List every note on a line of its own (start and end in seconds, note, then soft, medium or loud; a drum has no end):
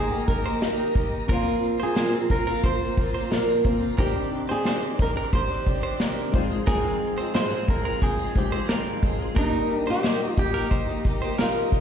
0.00 1.24 A#3 medium
0.00 1.26 A#3 medium
0.00 1.25 D#4 medium
0.00 1.26 D#4 medium
0.00 0.27 G#4 medium
0.00 1.27 A#4 medium
0.00 0.11 C5 medium
0.00 1.26 D#5 medium
0.00 1.26 G5 medium
0.08 0.26 A#3 soft
0.08 0.27 D#4 medium
0.08 0.26 G4 medium
0.27 0.44 D#3 medium
0.27 0.45 A#3 medium
0.27 0.44 D#4 medium
0.27 0.42 G4 medium
0.27 0.91 A#4 medium
0.27 kick medium
0.27 shaker soft
0.44 0.60 A#3 soft
0.44 0.61 D#4 soft
0.44 0.61 G4 medium
0.44 0.62 C5 medium
0.60 0.93 D#3 medium
0.60 0.94 A#3 medium
0.60 0.94 D#4 medium
0.60 0.96 G4 medium
0.60 1.09 A#4 medium
0.60 snare loud
0.60 shaker loud
0.94 1.28 D#3 medium
0.94 1.28 A#3 medium
0.94 1.29 D#4 medium
0.94 1.30 G4 medium
0.94 kick loud
0.94 shaker medium
1.12 shaker soft
1.28 1.79 A#2 medium
1.28 1.80 F3 medium
1.28 3.96 F3 medium
1.28 3.60 A#3 medium
1.28 1.80 A#3 loud
1.28 3.60 C4 medium
1.28 1.78 C4 loud
1.28 3.96 C4 medium
1.28 1.78 F4 loud
1.28 3.61 F4 medium
1.28 1.61 A#4 loud
1.28 3.96 A#4 medium
1.28 3.62 C5 medium
1.28 kick loud
1.28 shaker medium
1.33 1.83 F4 medium
1.64 shaker medium
1.79 1.94 A#3 soft
1.79 1.95 C4 medium
1.79 1.95 F4 medium
1.79 1.96 C5 medium
1.79 shaker medium
1.83 2.31 G#4 medium
1.95 2.12 A#2 medium
1.95 2.12 F3 medium
1.95 2.13 A#3 loud
1.95 2.13 C4 loud
1.95 2.12 F4 loud
1.95 2.13 C5 medium
1.95 snare loud
1.95 shaker medium
2.13 2.30 A#3 soft
2.13 2.30 C4 medium
2.13 2.30 F4 soft
2.30 2.47 F3 medium
2.30 2.47 A#3 medium
2.30 2.46 F4 medium
2.30 2.65 A#4 loud
2.30 kick loud
2.30 shaker medium
2.47 2.82 A#3 medium
2.47 2.81 C4 medium
2.47 2.80 F4 medium
2.47 2.63 A#4 medium
2.47 snare soft
2.63 2.80 C5 medium
2.63 3.28 C5 loud
2.63 kick loud
2.63 shaker medium
2.81 2.97 A#3 soft
2.81 2.98 C4 soft
2.81 2.98 F4 medium
2.97 3.14 F3 medium
2.97 3.15 A#3 medium
2.97 3.14 C4 medium
2.97 3.13 F4 medium
2.97 kick medium
2.97 shaker medium
3.14 3.30 A#3 medium
3.14 3.30 C4 soft
3.14 3.30 F4 medium
3.14 3.31 C5 medium
3.30 3.64 A#2 medium
3.30 3.62 F3 medium
3.30 3.64 A#3 medium
3.30 3.64 C4 medium
3.30 3.65 F4 medium
3.30 3.79 A#4 medium
3.30 snare loud
3.30 shaker medium
3.64 3.97 F3 medium
3.64 3.98 A#3 medium
3.64 3.98 C4 medium
3.64 3.97 C4 medium
3.64 3.99 F4 medium
3.64 3.98 F4 medium
3.64 3.99 C5 medium
3.64 kick loud
3.64 shaker medium
3.82 shaker soft
3.97 4.48 C3 medium
3.97 4.48 D#3 medium
3.97 6.32 D#3 medium
3.97 4.48 C4 medium
3.97 6.30 D4 medium
3.97 4.46 D4 medium
3.97 6.30 D#4 medium
3.97 4.45 G4 medium
3.97 4.51 G4 medium
3.97 4.30 A#4 loud
3.97 9.34 C5 medium
3.97 6.31 C5 medium
3.97 6.32 D5 medium
3.97 kick loud
3.97 shaker medium
4.33 shaker medium
4.46 4.64 C4 soft
4.46 4.64 D4 soft
4.46 4.64 G4 medium
4.46 4.65 C5 medium
4.46 shaker medium
4.51 5.02 G#4 medium
4.64 4.82 C3 medium
4.64 4.82 D#3 loud
4.64 4.82 C4 loud
4.64 4.80 D4 loud
4.64 4.79 G4 medium
4.64 4.82 C5 medium
4.64 snare loud
4.64 shaker medium
4.80 4.96 C4 soft
4.80 4.97 D4 soft
4.80 4.98 G4 medium
4.97 5.15 D#3 medium
4.97 5.14 C4 medium
4.97 5.13 D4 medium
4.97 5.12 G4 medium
4.97 kick loud
4.97 shaker medium
5.02 5.11 A#4 loud
5.13 5.49 C4 soft
5.13 5.48 D4 soft
5.13 5.46 G4 medium
5.17 5.33 A#4 medium
5.33 5.49 C5 medium
5.33 5.97 C5 loud
5.33 kick loud
5.33 shaker medium
5.47 5.64 C4 soft
5.47 5.65 D4 soft
5.47 5.65 G4 medium
5.65 5.82 D#3 medium
5.65 5.83 C4 medium
5.65 5.82 D4 medium
5.65 5.81 G4 medium
5.65 kick medium
5.65 shaker medium
5.82 5.99 C4 soft
5.82 5.99 D4 soft
5.82 6.00 G4 medium
5.82 6.00 C5 medium
5.82 shaker medium
5.99 6.33 C3 medium
5.99 6.32 D#3 medium
5.99 6.33 C4 medium
5.99 6.34 D4 medium
5.99 6.34 G4 medium
5.99 6.48 A#4 medium
5.99 snare loud
5.99 shaker medium
6.31 6.50 F3 medium
6.31 8.30 G#3 medium
6.31 9.33 G#3 medium
6.31 6.50 G#3 medium
6.31 6.49 C4 medium
6.31 8.31 D#4 medium
6.31 9.33 F4 medium
6.31 8.32 F4 medium
6.31 6.49 G#4 medium
6.31 8.32 C5 medium
6.31 kick loud
6.31 shaker medium
6.50 6.66 F3 soft
6.50 6.66 G#3 soft
6.50 6.66 C4 soft
6.50 6.66 G#4 soft
6.50 shaker soft
6.66 7.17 G#2 medium
6.66 7.18 D#3 medium
6.66 7.18 F3 loud
6.66 7.18 G#3 loud
6.66 7.17 C4 loud
6.66 7.35 G#4 loud
6.66 7.16 G#4 loud
6.66 6.99 A#4 loud
6.66 kick loud
6.66 shaker medium
7.02 shaker medium
7.17 7.33 F3 soft
7.17 7.33 G#3 medium
7.17 7.34 C4 medium
7.17 7.34 G#4 soft
7.17 7.33 C5 medium
7.33 7.51 G#2 loud
7.33 7.51 D#3 medium
7.33 7.51 F3 loud
7.33 7.51 G#3 loud
7.33 7.50 C4 loud
7.33 7.49 G#4 loud
7.33 7.51 C5 medium
7.33 7.69 C5 loud
7.33 snare loud
7.33 shaker medium
7.50 7.66 F3 soft
7.50 7.66 G#3 medium
7.50 7.67 C4 medium
7.50 7.68 G#4 medium
7.67 7.84 F3 medium
7.67 7.84 G#3 medium
7.67 7.83 C4 medium
7.67 7.82 G#4 medium
7.67 8.03 A#4 loud
7.67 kick loud
7.67 shaker medium
7.83 8.19 F3 medium
7.83 8.19 G#3 medium
7.83 8.18 C4 medium
7.83 8.16 G#4 medium
7.83 8.02 A#4 medium
8.02 8.37 G#4 medium
8.02 8.18 C5 medium
8.02 kick loud
8.02 shaker medium
8.17 8.33 F3 medium
8.17 8.34 G#3 soft
8.17 8.35 C4 medium
8.17 8.35 G#4 medium
8.35 8.52 F3 medium
8.35 9.36 G#3 medium
8.35 8.52 G#3 medium
8.35 8.51 C4 medium
8.35 9.35 D#4 medium
8.35 9.37 F4 soft
8.35 9.00 G4 medium
8.35 8.51 G#4 medium
8.35 9.37 C5 medium
8.35 kick medium
8.35 shaker medium
8.52 8.68 F3 soft
8.52 8.69 G#3 medium
8.52 8.69 C4 medium
8.52 8.69 G#4 medium
8.52 8.68 C5 medium
8.69 9.03 G#2 medium
8.69 9.03 D#3 medium
8.69 9.00 F3 medium
8.69 9.02 G#3 medium
8.69 9.02 C4 medium
8.69 9.17 A#4 medium
8.69 snare loud
8.69 shaker medium
9.02 9.19 F3 medium
9.02 9.20 G#3 medium
9.02 9.19 C4 medium
9.02 9.18 G#4 medium
9.02 kick loud
9.02 shaker medium
9.19 9.35 F3 soft
9.19 9.35 G#3 soft
9.19 9.35 C4 soft
9.19 9.36 G#4 medium
9.19 shaker soft
9.34 9.86 D#3 medium
9.34 9.86 G3 medium
9.34 11.80 G3 medium
9.34 11.80 A#3 medium
9.34 9.87 A#3 loud
9.34 9.86 D#4 medium
9.34 11.80 D#4 medium
9.34 9.76 D#4 loud
9.34 9.84 G4 loud
9.34 11.80 G4 medium
9.34 9.68 A#4 loud
9.34 11.80 A#4 medium
9.34 kick loud
9.34 shaker medium
9.39 11.80 D#5 medium
9.71 shaker medium
9.76 9.89 D4 loud
9.86 10.02 A#3 soft
9.86 10.03 D#4 medium
9.86 10.03 G4 medium
9.86 10.02 C5 medium
9.86 shaker medium
9.90 10.38 G4 loud
10.03 10.20 D#3 loud
10.03 10.20 G3 medium
10.03 10.20 A#3 loud
10.03 10.19 D#4 loud
10.03 10.17 G4 loud
10.03 10.20 C5 medium
10.03 snare loud
10.03 shaker medium
10.19 10.36 A#3 soft
10.19 10.36 D#4 medium
10.19 10.36 G4 medium
10.36 10.54 G3 medium
10.36 10.54 A#3 medium
10.36 10.54 D#4 medium
10.36 10.53 G4 medium
10.36 11.69 G4 loud
10.36 kick loud
10.36 shaker medium
10.54 10.89 A#3 medium
10.54 10.87 D#4 medium
10.54 10.86 G4 medium
10.54 10.70 A#4 medium
10.54 snare soft
10.71 10.87 C5 medium
10.71 kick medium
10.71 shaker medium
10.87 11.04 A#3 soft
10.87 11.05 D#4 medium
10.87 11.04 G4 medium
11.04 11.21 G3 medium
11.04 11.22 A#3 medium
11.04 11.22 D#4 medium
11.04 11.21 G4 medium
11.04 kick medium
11.04 shaker medium
11.22 11.38 A#3 soft
11.22 11.39 D#4 medium
11.22 11.39 G4 medium
11.22 11.38 C5 medium
11.22 shaker medium
11.38 11.72 D#3 medium
11.38 11.69 G3 medium
11.38 11.70 A#3 medium
11.38 11.71 D#4 loud
11.38 11.80 F4 medium
11.38 11.72 G4 loud
11.38 11.80 A#4 medium
11.38 snare loud
11.38 shaker medium
11.71 11.80 G3 medium
11.71 11.80 A#3 medium
11.71 11.80 D#4 medium
11.71 11.80 G4 medium
11.71 kick loud
11.71 shaker medium